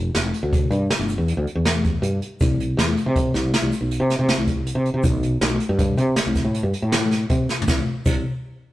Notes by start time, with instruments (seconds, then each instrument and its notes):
Already playing: fretless electric bass F1
0.15 fretless electric bass F1, snare, closed hi-hat
0.34 closed hi-hat
0.43 fretless electric bass D2
0.53 kick, closed hi-hat
0.71 fretless electric bass G2, closed hi-hat, shaker
0.90 snare, closed hi-hat
0.99 fretless electric bass G1
1.08 closed hi-hat, shaker
1.18 fretless electric bass E2
1.28 closed hi-hat
1.37 fretless electric bass D2
1.47 closed hi-hat
1.55 fretless electric bass E2
1.65 snare, closed hi-hat
1.84 kick, closed hi-hat, shaker
2.02 fretless electric bass G2, closed hi-hat
2.22 closed hi-hat
2.40 fretless electric bass C2, kick, closed hi-hat, shaker
2.60 closed hi-hat
2.77 fretless electric bass E2, snare, closed hi-hat
2.97 closed hi-hat
3.06 fretless electric bass C3
3.16 kick, closed hi-hat
3.34 fretless electric bass C2, snare, closed hi-hat, shaker
3.54 snare, closed hi-hat
3.62 fretless electric bass C2
3.72 closed hi-hat, shaker
3.81 fretless electric bass B1
3.91 closed hi-hat
4.00 fretless electric bass C3
4.10 snare, closed hi-hat
4.19 fretless electric bass C3
4.29 snare, closed hi-hat
4.38 fretless electric bass C2
4.47 kick, closed hi-hat, shaker
4.67 closed hi-hat
4.75 fretless electric bass C3
4.85 closed hi-hat
4.94 fretless electric bass C3
5.03 fretless electric bass B1, kick, closed hi-hat, shaker
5.23 closed hi-hat
5.41 fretless electric bass B1, snare, closed hi-hat
5.60 closed hi-hat
5.69 fretless electric bass G2
5.79 kick, closed hi-hat
5.97 fretless electric bass C3, closed hi-hat, shaker
6.16 snare, closed hi-hat
6.26 fretless electric bass C2
6.35 kick, snare, closed hi-hat, shaker
6.45 fretless electric bass A2
6.54 closed hi-hat
6.63 fretless electric bass G2
6.73 closed hi-hat
6.82 fretless electric bass A2
6.92 snare, closed hi-hat
7.11 snare, closed hi-hat
7.30 fretless electric bass C3, kick, closed hi-hat
7.49 snare, shaker
7.62 floor tom
7.68 fretless electric bass C2, kick, snare, shaker
8.06 fretless electric bass C2, kick, crash, shaker